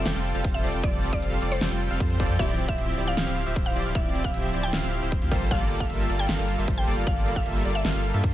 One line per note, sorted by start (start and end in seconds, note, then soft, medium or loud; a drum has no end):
0.00 0.11 E5 loud
0.06 0.13 F1 loud
0.06 0.13 G3 medium
0.06 0.13 C4 medium
0.06 0.13 F4 medium
0.06 0.13 A4 medium
0.06 0.13 G5 medium
0.06 snare loud
0.06 closed hi-hat medium
0.15 0.33 F1 medium
0.15 0.32 G3 medium
0.15 0.32 C4 medium
0.15 0.32 F4 medium
0.15 0.32 A4 medium
0.15 0.32 G5 medium
0.25 closed hi-hat medium
0.35 0.43 F1 loud
0.35 0.43 G3 medium
0.35 0.43 C4 medium
0.35 0.43 F4 medium
0.35 0.43 A4 medium
0.35 0.43 F5 loud
0.45 0.62 F1 medium
0.45 0.62 G3 medium
0.45 0.62 C4 medium
0.45 0.62 F4 medium
0.45 0.62 A4 medium
0.45 0.62 C5 loud
0.45 kick loud
0.45 closed hi-hat medium
0.54 0.69 E5 medium
0.54 closed hi-hat medium
0.64 0.72 F1 loud
0.64 0.72 G3 medium
0.64 0.72 C4 medium
0.64 0.72 F4 medium
0.64 0.72 A4 medium
0.64 0.72 D5 loud
0.64 closed hi-hat medium
0.67 closed hi-hat medium
0.70 0.82 F1 loud
0.70 0.81 G3 medium
0.70 0.81 C4 medium
0.70 0.81 F4 medium
0.70 0.81 A4 medium
0.70 0.81 G5 medium
0.70 closed hi-hat medium
0.83 1.11 F1 loud
0.83 1.10 G3 medium
0.83 1.10 C4 medium
0.83 1.10 F4 medium
0.83 1.10 A4 medium
0.83 1.10 D5 loud
0.83 0.98 D5 loud
0.83 kick loud
0.83 closed hi-hat medium
1.03 closed hi-hat medium
1.13 1.21 F1 loud
1.13 1.20 G3 loud
1.13 1.20 C4 medium
1.13 1.20 F4 medium
1.13 1.20 A4 medium
1.13 1.32 D5 medium
1.13 1.20 F5 loud
1.13 kick medium
1.22 1.40 F1 loud
1.22 1.39 G3 medium
1.22 1.39 C4 medium
1.22 1.39 F4 medium
1.22 1.39 A4 medium
1.22 1.39 F5 loud
1.22 closed hi-hat medium
1.42 1.59 F1 loud
1.42 1.59 G3 medium
1.42 1.59 C4 medium
1.42 1.59 F4 medium
1.42 1.59 A4 medium
1.42 1.59 D5 medium
1.42 closed hi-hat medium
1.52 2.32 C5 loud
1.61 1.69 F1 loud
1.61 1.69 G3 medium
1.61 1.69 C4 medium
1.61 1.69 F4 medium
1.61 1.69 A4 medium
1.61 1.69 G5 medium
1.61 snare loud
1.61 closed hi-hat medium
1.71 1.89 F1 medium
1.71 1.88 G3 medium
1.71 1.88 C4 medium
1.71 1.88 F4 medium
1.71 1.88 A4 medium
1.71 1.88 G5 medium
1.81 closed hi-hat medium
1.91 1.98 F1 loud
1.91 1.99 G3 medium
1.91 1.99 C4 medium
1.91 1.99 F4 medium
1.91 1.99 A4 medium
1.91 1.99 F5 loud
2.00 2.18 F2 medium
2.00 2.18 G3 loud
2.00 2.18 C4 medium
2.00 2.17 F4 medium
2.00 2.18 A4 medium
2.00 2.18 C5 loud
2.00 kick loud
2.00 closed hi-hat medium
2.10 closed hi-hat medium
2.20 2.28 F1 loud
2.20 2.28 G3 medium
2.20 2.28 C4 medium
2.20 2.28 F4 medium
2.20 2.28 A4 medium
2.20 2.28 D5 loud
2.20 kick loud
2.20 closed hi-hat medium
2.23 closed hi-hat medium
2.26 2.37 F2 loud
2.26 2.37 G3 medium
2.26 2.37 C4 medium
2.26 2.37 F4 medium
2.26 2.37 A4 medium
2.26 2.37 G5 medium
2.26 closed hi-hat medium
2.39 2.67 D1 loud
2.39 2.66 F3 medium
2.39 2.66 C4 medium
2.39 2.66 E4 medium
2.39 2.66 G4 medium
2.39 2.66 D5 loud
2.39 2.54 E5 loud
2.39 kick loud
2.39 closed hi-hat medium
2.59 closed hi-hat medium
2.68 2.76 D1 loud
2.68 2.76 F3 loud
2.68 2.76 C4 medium
2.68 2.76 E4 medium
2.68 2.76 G4 medium
2.68 2.88 E5 medium
2.68 2.76 E5 loud
2.68 kick medium
2.78 2.96 D1 loud
2.78 2.95 F3 medium
2.78 2.95 C4 medium
2.78 2.95 E4 medium
2.78 2.95 G4 medium
2.78 2.95 E5 loud
2.78 closed hi-hat medium
2.98 3.15 D1 loud
2.98 3.15 F3 medium
2.98 3.15 C4 medium
2.98 3.15 E4 medium
2.98 3.15 G4 medium
2.98 3.15 D5 medium
2.98 closed hi-hat medium
3.08 3.22 F5 loud
3.17 3.25 D1 loud
3.17 3.25 F3 medium
3.17 3.25 C4 medium
3.17 3.25 E4 medium
3.17 3.25 G4 medium
3.17 3.25 F5 medium
3.17 snare loud
3.17 closed hi-hat medium
3.27 3.45 D1 loud
3.27 3.44 F3 medium
3.27 3.44 C4 medium
3.27 3.44 E4 medium
3.27 3.44 G4 medium
3.27 3.44 F5 medium
3.37 closed hi-hat medium
3.46 3.54 D1 medium
3.46 3.55 F3 medium
3.46 3.55 C4 medium
3.46 3.55 E4 medium
3.46 3.55 G4 medium
3.46 3.55 E5 loud
3.56 3.74 D1 medium
3.56 3.73 F3 loud
3.56 3.73 C4 medium
3.56 3.73 E4 medium
3.56 3.73 G4 medium
3.56 3.73 C5 loud
3.56 kick loud
3.56 closed hi-hat medium
3.66 3.81 F5 medium
3.66 closed hi-hat medium
3.76 3.83 D1 loud
3.76 3.84 F3 medium
3.76 3.84 C4 medium
3.76 3.84 E4 medium
3.76 3.84 G4 medium
3.76 3.84 D5 loud
3.76 closed hi-hat medium
3.79 closed hi-hat medium
3.82 3.93 D1 loud
3.82 3.93 F3 medium
3.82 3.93 C4 medium
3.82 3.93 E4 medium
3.82 3.93 G4 medium
3.82 3.93 F5 medium
3.82 closed hi-hat medium
3.95 4.22 D1 loud
3.95 4.22 F3 medium
3.95 4.22 C4 medium
3.95 4.22 E4 medium
3.95 4.22 G4 medium
3.95 4.22 D5 loud
3.95 4.10 E5 loud
3.95 kick loud
3.95 closed hi-hat medium
4.15 closed hi-hat medium
4.24 4.32 D1 medium
4.24 4.32 F3 loud
4.24 4.32 C4 medium
4.24 4.32 E4 medium
4.24 4.32 G4 medium
4.24 4.32 E5 loud
4.24 4.44 F5 medium
4.24 kick medium
4.34 4.52 D1 loud
4.34 4.51 F3 medium
4.34 4.51 C4 medium
4.34 4.51 E4 medium
4.34 4.51 G4 medium
4.34 4.51 E5 loud
4.34 closed hi-hat medium
4.54 4.71 D1 loud
4.54 4.71 F3 medium
4.54 4.71 C4 medium
4.54 4.71 E4 medium
4.54 4.71 G4 medium
4.54 4.71 D5 medium
4.54 closed hi-hat medium
4.63 5.43 G5 loud
4.73 4.81 D1 loud
4.73 4.81 F3 medium
4.73 4.81 C4 medium
4.73 4.81 E4 medium
4.73 4.81 G4 medium
4.73 4.81 F5 medium
4.73 snare loud
4.73 closed hi-hat medium
4.83 5.00 D1 loud
4.83 5.00 F3 medium
4.83 5.00 C4 medium
4.83 5.00 E4 medium
4.83 5.00 G4 medium
4.83 5.00 F5 medium
4.93 closed hi-hat medium
5.02 5.20 D1 loud
5.02 5.19 F3 medium
5.02 5.19 C4 medium
5.02 5.20 E4 medium
5.02 5.20 G4 medium
5.02 5.19 C5 medium
5.12 kick loud
5.12 closed hi-hat medium
5.22 5.30 D2 loud
5.22 5.29 F3 medium
5.22 5.29 C4 medium
5.22 5.29 E4 medium
5.22 5.29 G4 medium
5.22 5.29 F5 medium
5.22 closed hi-hat medium
5.32 5.49 G1 loud
5.32 5.49 G3 medium
5.32 5.49 A#3 medium
5.32 5.49 F4 medium
5.32 5.49 A4 medium
5.32 5.49 C5 medium
5.32 kick loud
5.32 closed hi-hat soft
5.35 closed hi-hat medium
5.38 closed hi-hat medium
5.51 5.78 G1 loud
5.51 5.78 G3 medium
5.51 5.78 A#3 medium
5.51 5.78 F4 medium
5.51 5.78 A4 medium
5.51 5.78 D5 loud
5.51 5.66 F5 loud
5.51 kick loud
5.51 closed hi-hat medium
5.70 closed hi-hat medium
5.80 5.88 G1 medium
5.80 5.88 G3 medium
5.80 5.88 A#3 medium
5.80 5.88 F4 medium
5.80 5.88 A4 medium
5.80 5.88 E5 loud
5.80 6.00 F5 loud
5.80 kick medium
5.90 6.07 G1 loud
5.90 6.07 G3 medium
5.90 6.07 A#3 medium
5.90 6.07 F4 medium
5.90 6.07 A4 medium
5.90 6.07 E5 loud
5.90 closed hi-hat medium
6.09 6.27 G1 loud
6.09 6.27 G3 medium
6.09 6.27 A#3 medium
6.09 6.27 F4 medium
6.09 6.27 A4 medium
6.09 6.27 D5 medium
6.09 closed hi-hat medium
6.19 6.34 G5 loud
6.29 6.37 G1 loud
6.29 6.36 G3 medium
6.29 6.36 A#3 medium
6.29 6.36 F4 medium
6.29 6.36 A4 medium
6.29 6.36 F5 medium
6.29 snare loud
6.29 closed hi-hat medium
6.39 6.56 G1 medium
6.39 6.56 G3 medium
6.39 6.56 A#3 medium
6.39 6.56 F4 medium
6.39 6.56 A4 medium
6.39 6.56 F5 medium
6.48 closed hi-hat medium
6.58 6.66 G1 loud
6.58 6.66 G3 medium
6.58 6.66 A#3 medium
6.58 6.66 F4 medium
6.58 6.66 A4 medium
6.58 6.66 E5 loud
6.68 6.85 G1 loud
6.68 6.85 G3 medium
6.68 6.85 A#3 medium
6.68 6.85 F4 medium
6.68 6.85 A4 medium
6.68 6.85 C5 loud
6.68 kick loud
6.68 closed hi-hat medium
6.78 6.92 G5 loud
6.78 closed hi-hat medium
6.87 6.95 G1 loud
6.87 6.96 G3 medium
6.87 6.96 A#3 medium
6.87 6.96 F4 medium
6.87 6.96 A4 medium
6.87 6.96 D5 loud
6.87 closed hi-hat soft
6.91 closed hi-hat medium
6.94 7.05 G1 medium
6.94 7.05 G3 medium
6.94 7.05 A#3 medium
6.94 7.05 F4 medium
6.94 7.04 A4 medium
6.94 7.05 F5 medium
6.94 closed hi-hat medium
7.07 7.34 G1 loud
7.07 7.34 G3 medium
7.07 7.34 A#3 medium
7.07 7.34 F4 medium
7.07 7.34 A4 medium
7.07 7.34 D5 loud
7.07 7.22 F5 loud
7.07 kick loud
7.07 closed hi-hat medium
7.26 closed hi-hat medium
7.36 7.44 G1 loud
7.36 7.43 G3 loud
7.36 7.43 A#3 medium
7.36 7.43 F4 medium
7.36 7.43 A4 medium
7.36 7.43 E5 loud
7.36 7.56 F5 medium
7.36 kick medium
7.46 7.63 G1 loud
7.46 7.62 G3 medium
7.46 7.62 A#3 medium
7.46 7.62 F4 medium
7.46 7.62 A4 medium
7.46 7.62 E5 loud
7.46 closed hi-hat medium
7.65 7.83 G1 loud
7.65 7.82 G3 medium
7.65 7.82 A#3 medium
7.65 7.82 F4 medium
7.65 7.82 A4 medium
7.65 7.82 D5 medium
7.65 closed hi-hat medium
7.75 8.34 E5 loud
7.85 7.93 G1 loud
7.85 7.92 G3 medium
7.85 7.92 A#3 medium
7.85 7.92 F4 medium
7.85 7.92 A4 medium
7.85 7.92 F5 medium
7.85 snare loud
7.85 closed hi-hat medium
7.95 8.12 G1 medium
7.95 8.12 G3 medium
7.95 8.12 A#3 medium
7.95 8.12 F4 medium
7.95 8.12 A4 medium
7.95 8.12 F5 medium
8.04 closed hi-hat medium
8.14 8.22 G2 loud
8.14 8.22 G3 medium
8.14 8.22 A#3 medium
8.14 8.22 F4 medium
8.14 8.22 A4 medium
8.14 8.22 E5 loud
8.24 8.34 G2 loud
8.24 8.34 G3 medium
8.24 8.34 A#3 medium
8.24 8.34 F4 medium
8.24 8.34 A4 medium
8.24 8.34 C5 loud
8.24 kick loud
8.24 closed hi-hat medium